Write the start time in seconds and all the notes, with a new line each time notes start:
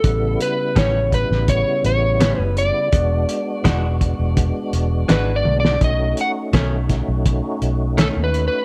Already playing: A4
0.04 A1 C#3 G3 B3 E4, kick, closed hi-hat
0.41 B4, closed hi-hat
0.76 A1 A2 G3 B3 C#4 C#5, kick, snare, closed hi-hat
1.12 B4, kick, closed hi-hat
1.31 A1, snare
1.48 C#5, kick, closed hi-hat
1.84 A1 C#5, closed hi-hat
2.20 A2 G3 B3 C#4, snare, closed hi-hat
2.39 F#1 B4
2.57 D5, closed hi-hat
2.92 E1 G#3 B3 D4 F#4, kick, closed hi-hat
3.29 closed hi-hat
3.64 E1 E3 G#3 D4 F#4, kick, snare, closed hi-hat
4.01 kick, closed hi-hat
4.19 E1
4.37 kick, closed hi-hat
4.73 E1, closed hi-hat
5.09 G#1 E3 G#3 D4 F#4 B4, snare, closed hi-hat
5.36 D5
5.45 B1, high tom
5.60 D5
5.65 snare
5.80 B1 A3 C#4 D#4 F#4, kick, closed hi-hat
5.84 D#5
6.17 F#5, closed hi-hat
6.53 B1 B2 D#3 A3 C#4, kick, snare, closed hi-hat
6.89 kick, snare, closed hi-hat
7.08 B1
7.26 kick, closed hi-hat
7.62 B1, closed hi-hat
7.98 B2 D#3 A3 C#4 A4, snare, closed hi-hat
8.17 D#2
8.24 B4
8.34 closed hi-hat
8.48 B4